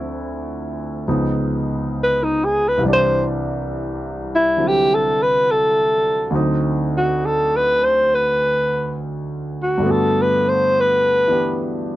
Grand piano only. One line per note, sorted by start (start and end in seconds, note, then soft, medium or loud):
0.00 1.04 D2 soft
0.00 1.05 D3 soft
0.00 1.07 F3 soft
0.00 1.08 C4 soft
0.00 1.09 E4 medium
1.08 2.82 C#2 soft
1.08 2.83 C#3 soft
1.08 2.83 F3 soft
1.08 2.83 B3 soft
1.08 2.83 D#4 medium
2.77 6.29 C2 medium
2.77 6.31 C3 soft
2.83 6.32 E3 soft
2.83 6.34 G3 medium
2.88 6.35 D4 medium
4.57 6.30 D3 soft
4.57 6.32 F#3 soft
4.57 6.33 C4 soft
4.57 6.33 E4 soft
6.30 9.82 D2 medium
6.30 9.79 D3 soft
6.30 9.84 F#3 soft
6.30 9.84 C4 soft
6.35 9.85 D#4 medium
9.78 11.96 G2 medium
9.78 11.96 D3 soft
9.83 11.96 A3 soft
9.83 11.28 B3 soft
9.89 11.96 F#4 medium
11.27 11.96 E3 soft
11.27 11.96 B3 soft
11.27 11.96 D4 soft
11.27 11.96 G4 soft